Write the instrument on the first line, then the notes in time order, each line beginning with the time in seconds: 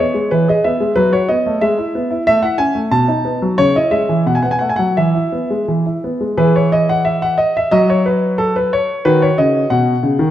grand piano
Already playing: C#5
0.00 B3
0.14 G#3
0.31 E3 B4
0.48 G#4 D#5
0.64 B3 E5
0.80 G#3
0.96 F#3 B4
1.12 F#4 C#5
1.29 B3 D#5
1.46 A3
1.61 G#3 E5
1.78 E4
1.95 B3
2.11 E4
2.27 A3 E5
2.42 E4 F#5
2.58 C#4 G#5
2.75 A3
2.91 B2 A5
3.08 D#4
3.25 B3
3.42 F#3
3.58 C#3 C#5
3.75 E4 D#5
3.91 G#3 E5
4.09 E3
4.26 B2 F#5
4.35 G#5
4.42 B3 F#5
4.51 G#5
4.59 A3 F#5
4.69 G#5
4.76 F#3 F#5
4.97 E3 E5
5.15 E4
5.32 B3
5.50 G#3
5.68 E3
5.86 E4
6.04 B3
6.21 G#3
6.37 E3 G#4 B4
6.56 C#5
6.72 D#5
6.89 F#5
7.05 E5
7.22 F#5
7.38 D#5
7.57 E5
7.71 F#3 F#4 D#5
7.90 C#5
8.06 B4
8.38 A4
8.56 B4
8.73 C#5
9.05 D#3 F#4 B4
9.22 C#5
9.38 C#3 D#5
9.70 B2 F#5
10.03 C#3
10.19 D#3